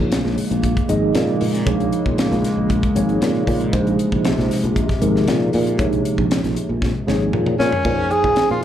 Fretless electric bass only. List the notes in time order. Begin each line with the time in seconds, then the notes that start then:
0.00 A#1
0.25 A#1
0.51 A#1
0.89 G#1
1.15 A#2
1.41 A#2
1.67 A#1
2.06 A#1
2.32 A#1
2.57 A#1
2.95 G#1
3.21 A#2
3.48 A#2
3.73 A#1
4.12 A#1
4.38 A#1
4.64 A#1
5.02 G#1
5.28 A#2
5.54 A#2
5.80 A#1
6.18 A#1
6.44 A#1
6.69 A#1
7.08 G#1
7.34 A#2
7.59 A#2
7.85 A#2
8.11 muted fretless electric bass stroke
8.24 A#2
8.50 A#2